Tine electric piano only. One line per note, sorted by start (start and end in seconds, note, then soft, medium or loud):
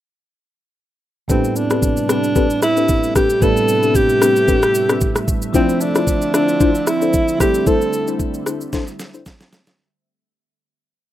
1.28 3.37 A2 medium
1.28 3.38 G3 medium
1.28 3.38 B3 medium
1.28 3.38 C4 medium
1.28 3.39 D4 medium
1.28 3.39 E4 medium
3.40 5.50 A2 medium
3.40 5.50 G3 medium
3.40 5.50 B3 medium
3.40 5.51 C4 medium
3.40 5.51 D4 medium
3.40 5.51 E4 medium
5.53 7.36 F3 medium
5.53 7.36 A3 medium
5.53 7.37 C4 medium
5.53 7.37 D4 medium
5.53 7.37 E4 medium
7.39 9.48 G3 medium
7.39 9.48 A3 medium
7.39 9.49 C4 medium
7.39 9.49 D4 medium
7.39 9.50 E4 medium